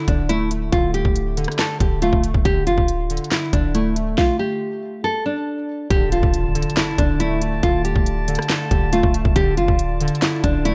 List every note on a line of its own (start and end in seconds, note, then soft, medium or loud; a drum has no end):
0.00 0.08 D3 medium
0.08 0.70 D1 loud
0.08 0.71 D3 medium
0.08 0.27 D4 medium
0.08 kick medium
0.08 closed hi-hat medium
0.29 0.50 A3 medium
0.29 0.49 E4 medium
0.29 closed hi-hat medium
0.51 1.59 A3 medium
0.51 closed hi-hat medium
0.72 1.04 D1 loud
0.72 0.93 D3 medium
0.72 0.92 F4 loud
0.72 kick loud
0.72 closed hi-hat medium
0.94 1.36 D3 medium
0.94 1.55 G4 medium
0.94 closed hi-hat medium
1.05 1.46 D1 loud
1.05 kick medium
1.16 closed hi-hat medium
1.37 1.58 D3 medium
1.37 closed hi-hat medium
1.44 cross-stick loud
1.44 closed hi-hat medium
1.52 closed hi-hat soft
1.59 1.79 D3 medium
1.59 1.78 A4 medium
1.59 snare loud
1.59 clap medium
1.59 closed hi-hat medium
1.80 2.11 D1 loud
1.80 2.44 D3 medium
1.80 2.00 G4 medium
1.80 kick medium
1.80 closed hi-hat medium
2.02 2.22 A3 loud
2.02 2.21 F4 loud
2.02 closed hi-hat medium
2.13 2.33 D1 loud
2.13 kick medium
2.23 2.45 A3 medium
2.23 closed hi-hat medium
2.34 2.45 D1 loud
2.34 kick medium
2.45 2.68 D1 loud
2.45 2.66 D3 loud
2.45 2.65 G4 loud
2.45 kick loud
2.45 closed hi-hat medium
2.67 2.77 F1 loud
2.67 3.09 D3 medium
2.67 3.28 F4 medium
2.67 closed hi-hat medium
2.78 3.19 D1 loud
2.78 kick medium
2.88 closed hi-hat medium
3.10 3.30 D3 medium
3.10 closed hi-hat medium
3.17 closed hi-hat medium
3.24 closed hi-hat soft
3.31 3.52 D3 medium
3.31 3.51 E4 medium
3.31 snare loud
3.31 clap medium
3.31 closed hi-hat medium
3.53 4.15 D1 loud
3.53 4.61 D3 medium
3.53 3.72 D4 medium
3.53 kick medium
3.53 closed hi-hat medium
3.75 3.95 A3 medium
3.75 3.94 E4 medium
3.75 closed hi-hat medium
3.96 5.04 A3 medium
3.96 closed hi-hat medium
4.18 4.37 F4 loud
4.18 kick loud
4.18 snare medium
4.39 5.00 G4 medium
5.04 5.24 A4 medium
5.26 5.87 D4 medium
5.90 6.22 D1 loud
5.90 6.11 D3 medium
5.90 10.75 F4 medium
5.90 6.10 G4 loud
5.90 9.32 D5 medium
5.90 9.32 A5 loud
5.90 kick loud
5.90 closed hi-hat medium
5.90 impact medium
6.12 6.54 D3 medium
6.12 6.73 F4 medium
6.12 closed hi-hat medium
6.23 6.64 D1 loud
6.23 kick medium
6.34 closed hi-hat medium
6.55 6.75 D3 medium
6.55 closed hi-hat medium
6.62 closed hi-hat medium
6.70 closed hi-hat soft
6.77 6.97 D3 medium
6.77 6.96 E4 medium
6.77 snare loud
6.77 clap medium
6.77 closed hi-hat medium
6.98 7.61 D1 loud
6.98 7.62 D3 medium
6.98 7.18 D4 medium
6.98 kick loud
6.98 closed hi-hat medium
7.20 7.41 A3 medium
7.20 7.39 E4 medium
7.20 closed hi-hat medium
7.42 8.50 A3 medium
7.42 closed hi-hat medium
7.63 7.94 D1 loud
7.63 7.84 D3 medium
7.63 7.83 F4 loud
7.63 kick loud
7.63 closed hi-hat medium
7.85 8.27 D3 medium
7.85 8.46 G4 medium
7.85 closed hi-hat medium
7.96 8.37 D1 loud
7.96 kick medium
8.06 closed hi-hat medium
8.28 8.48 D3 medium
8.28 closed hi-hat medium
8.35 cross-stick loud
8.35 closed hi-hat medium
8.42 closed hi-hat soft
8.49 8.70 D3 medium
8.49 8.69 A4 medium
8.49 snare loud
8.49 clap medium
8.49 closed hi-hat medium
8.71 9.02 D1 loud
8.71 9.34 D3 medium
8.71 8.90 G4 medium
8.71 kick medium
8.71 closed hi-hat medium
8.93 9.13 A3 loud
8.93 9.12 F4 medium
8.93 closed hi-hat medium
9.03 9.24 D1 loud
9.03 kick loud
9.14 9.36 A3 medium
9.14 closed hi-hat medium
9.25 9.35 D1 loud
9.25 kick medium
9.36 9.59 D1 loud
9.36 9.56 D3 loud
9.36 9.55 G4 loud
9.36 10.75 D5 medium
9.36 10.75 A5 loud
9.36 kick loud
9.36 closed hi-hat medium
9.57 9.68 F1 loud
9.57 10.00 D3 medium
9.57 10.18 F4 medium
9.57 closed hi-hat medium
9.68 10.10 D1 loud
9.68 kick medium
9.79 closed hi-hat medium
10.01 10.21 D3 loud
10.01 closed hi-hat medium
10.08 closed hi-hat medium
10.15 closed hi-hat medium
10.22 10.43 D3 medium
10.22 10.42 E4 medium
10.22 snare loud
10.22 clap medium
10.22 closed hi-hat medium
10.44 10.75 D1 loud
10.44 10.75 D3 medium
10.44 10.63 D4 medium
10.44 kick medium
10.44 closed hi-hat medium
10.65 10.75 A3 loud
10.65 10.75 E4 medium
10.65 closed hi-hat medium